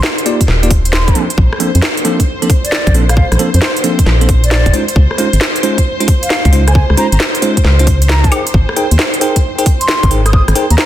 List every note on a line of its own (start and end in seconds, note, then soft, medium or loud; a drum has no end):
0.00 10.86 C5 medium
0.00 snare loud
0.18 closed hi-hat soft
0.26 0.41 A#3 medium
0.26 0.41 D#4 medium
0.26 0.41 F4 medium
0.26 0.41 G4 medium
0.26 0.41 D5 loud
0.26 open hi-hat loud
0.41 kick medium
0.41 closed hi-hat medium
0.48 1.12 D#1 loud
0.48 snare medium
0.63 0.70 A#3 medium
0.63 0.70 D#4 medium
0.63 0.70 F4 medium
0.63 0.70 G4 medium
0.63 0.70 D5 medium
0.63 closed hi-hat soft
0.71 kick loud
0.71 open hi-hat loud
0.85 closed hi-hat medium
0.93 1.21 C6 medium
0.93 snare loud
1.08 kick loud
1.08 closed hi-hat soft
1.15 1.25 F3 medium
1.15 1.25 A#3 medium
1.15 1.25 C4 medium
1.15 1.25 D4 medium
1.15 1.25 A4 medium
1.15 open hi-hat loud
1.30 closed hi-hat medium
1.38 1.49 A#1 loud
1.38 kick loud
1.53 cross-stick medium
1.60 1.69 F3 medium
1.60 1.69 A#3 medium
1.60 1.69 C4 medium
1.60 1.69 D4 medium
1.60 1.69 A4 medium
1.60 open hi-hat loud
1.75 1.81 F2 loud
1.75 closed hi-hat medium
1.82 snare loud
1.97 closed hi-hat soft
2.05 2.20 F3 medium
2.05 2.20 A#3 medium
2.05 2.20 C4 medium
2.05 2.20 D4 medium
2.05 2.20 A4 loud
2.05 open hi-hat loud
2.20 kick medium
2.20 closed hi-hat medium
2.42 2.50 F3 medium
2.42 2.50 A#3 medium
2.42 2.50 C4 medium
2.42 2.50 D4 medium
2.42 2.50 A4 medium
2.42 closed hi-hat soft
2.50 kick loud
2.50 open hi-hat loud
2.65 2.94 D5 medium
2.65 closed hi-hat medium
2.72 snare loud
2.87 3.25 A#1 medium
2.87 kick loud
2.87 closed hi-hat soft
2.94 3.04 F3 medium
2.94 3.04 A#3 medium
2.94 3.04 C4 medium
2.94 3.04 D4 medium
2.94 3.04 A4 medium
2.94 open hi-hat loud
3.09 3.14 F5 medium
3.09 cross-stick medium
3.09 closed hi-hat medium
3.17 3.27 F5 medium
3.17 kick loud
3.32 3.37 A#1 loud
3.32 cross-stick medium
3.32 closed hi-hat soft
3.39 3.48 F3 medium
3.39 3.48 A#3 medium
3.39 3.48 C4 medium
3.39 3.48 D4 medium
3.39 3.48 A4 loud
3.39 open hi-hat loud
3.54 3.60 F2 loud
3.54 3.59 C5 medium
3.54 closed hi-hat medium
3.62 3.71 C5 medium
3.62 snare loud
3.77 closed hi-hat medium
3.84 3.99 F3 medium
3.84 3.99 A#3 medium
3.84 3.99 C4 medium
3.84 3.99 D4 medium
3.84 3.99 A4 medium
3.84 open hi-hat loud
3.99 kick medium
3.99 closed hi-hat medium
4.06 4.65 A#1 loud
4.06 snare medium
4.21 4.29 F3 medium
4.21 4.29 A#3 medium
4.21 4.29 C4 medium
4.21 4.29 D4 medium
4.21 4.29 A4 medium
4.21 closed hi-hat soft
4.29 kick loud
4.29 open hi-hat loud
4.44 4.74 D5 medium
4.44 closed hi-hat medium
4.51 snare loud
4.66 4.72 F1 loud
4.66 kick loud
4.66 closed hi-hat soft
4.74 4.83 G#3 medium
4.74 4.83 C#4 medium
4.74 4.83 D#4 medium
4.74 4.83 F4 medium
4.74 4.83 C5 medium
4.74 open hi-hat loud
4.88 closed hi-hat medium
4.96 5.07 C#2 loud
4.96 kick loud
5.11 cross-stick medium
5.18 5.28 G#3 medium
5.18 5.28 C#4 medium
5.18 5.28 D#4 medium
5.18 5.28 F4 medium
5.18 5.28 C5 medium
5.18 open hi-hat loud
5.33 5.39 G#1 loud
5.33 closed hi-hat medium
5.41 snare loud
5.56 closed hi-hat soft
5.63 5.78 G#3 medium
5.63 5.78 C#4 medium
5.63 5.78 D#4 medium
5.63 5.78 F4 medium
5.63 5.78 C5 medium
5.63 open hi-hat loud
5.78 kick medium
5.78 closed hi-hat medium
6.00 6.08 G#3 medium
6.00 6.08 C#4 medium
6.00 6.08 D#4 medium
6.00 6.08 F4 medium
6.00 6.08 C5 medium
6.00 closed hi-hat soft
6.08 kick loud
6.08 open hi-hat loud
6.23 6.53 F5 medium
6.23 closed hi-hat medium
6.30 snare loud
6.45 6.84 C#2 loud
6.45 kick loud
6.45 closed hi-hat soft
6.53 6.62 G#3 medium
6.53 6.62 C#4 medium
6.53 6.62 D#4 medium
6.53 6.62 F4 medium
6.53 6.62 C5 medium
6.53 open hi-hat loud
6.67 6.72 G#5 medium
6.67 cross-stick medium
6.67 closed hi-hat medium
6.75 6.85 G#5 medium
6.75 kick loud
6.90 6.95 C#2 loud
6.90 cross-stick medium
6.97 7.07 G#3 medium
6.97 7.07 C#4 medium
6.97 7.07 D#4 medium
6.97 7.07 F4 medium
6.97 7.07 C5 loud
6.97 7.07 A#5 medium
6.97 open hi-hat loud
7.12 7.18 G#1 loud
7.12 7.17 A#5 medium
7.12 closed hi-hat medium
7.20 snare loud
7.35 closed hi-hat medium
7.42 7.57 G#3 medium
7.42 7.57 C#4 medium
7.42 7.57 D#4 medium
7.42 7.57 F4 medium
7.42 7.57 C5 loud
7.42 open hi-hat loud
7.57 kick medium
7.57 closed hi-hat medium
7.65 8.29 C#2 loud
7.65 snare medium
7.79 7.87 G#3 medium
7.79 7.87 C#4 medium
7.79 7.87 D#4 medium
7.79 7.87 F4 medium
7.79 7.87 C5 medium
7.79 closed hi-hat medium
7.87 kick loud
7.87 open hi-hat loud
8.02 closed hi-hat medium
8.09 8.38 A#5 medium
8.09 snare loud
8.24 kick loud
8.24 closed hi-hat soft
8.32 8.41 D#4 medium
8.32 8.41 G#4 medium
8.32 8.41 A#4 medium
8.32 8.41 C5 medium
8.32 8.41 G5 medium
8.32 open hi-hat loud
8.32 high woodblock medium
8.47 closed hi-hat medium
8.54 8.65 G#1 loud
8.54 kick loud
8.69 cross-stick medium
8.77 8.86 D#4 medium
8.77 8.86 G#4 medium
8.77 8.86 A#4 medium
8.77 8.86 C5 medium
8.77 8.86 G5 loud
8.77 open hi-hat loud
8.91 8.97 D#2 loud
8.91 closed hi-hat medium
8.99 snare loud
9.14 closed hi-hat medium
9.21 9.36 D#4 medium
9.21 9.36 G#4 medium
9.21 9.36 A#4 medium
9.21 9.36 C5 medium
9.21 9.36 G5 loud
9.21 open hi-hat loud
9.36 kick medium
9.36 closed hi-hat medium
9.59 9.66 D#4 medium
9.59 9.66 G#4 medium
9.59 9.66 A#4 medium
9.59 9.66 C5 medium
9.59 9.66 G5 medium
9.59 closed hi-hat medium
9.66 kick loud
9.66 open hi-hat loud
9.81 10.11 C6 medium
9.81 closed hi-hat medium
9.88 snare loud
10.03 10.42 G#1 medium
10.03 kick loud
10.03 closed hi-hat soft
10.11 10.20 D#4 medium
10.11 10.20 G#4 medium
10.11 10.20 A#4 medium
10.11 10.20 C5 medium
10.11 10.20 G5 medium
10.11 open hi-hat loud
10.26 10.31 D#6 medium
10.26 cross-stick medium
10.26 closed hi-hat medium
10.33 10.43 D#6 medium
10.33 kick loud
10.48 10.54 G#1 loud
10.48 cross-stick medium
10.48 closed hi-hat soft
10.56 10.65 D#4 medium
10.56 10.65 G#4 medium
10.56 10.65 A#4 medium
10.56 10.65 C5 medium
10.56 10.65 G5 loud
10.56 open hi-hat loud
10.70 10.76 D#2 loud
10.70 10.75 A#5 medium
10.70 closed hi-hat medium
10.78 10.86 A#5 medium
10.78 snare loud